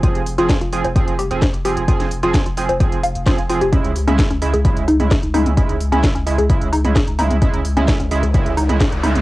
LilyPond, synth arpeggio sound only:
\new Staff \with { instrumentName = "Synth arpeggio sound" } { \time 4/4 \key des \lydian \tempo 4 = 130 f'16 r8 f'16 r16 f'16 r16 c''16 r8 g'16 r16 c''16 r16 g'16 r16 | f'16 r8 f'16 r16 f'16 r16 c''16 r8 f''16 r16 f'16 r16 f'16 g'16 | des'16 r8 des'16 r16 des'16 r16 aes'16 r8 ees'16 r16 aes'16 r16 ees'16 r16 | des'16 r8 des'16 r16 des'16 r16 aes'16 r8 ees'16 r16 aes'16 r16 ees'16 r16 |
des'16 r8 des'16 r16 des'16 r16 aes'16 r8 ees'16 r16 aes'16 r16 ees'16 r16 | }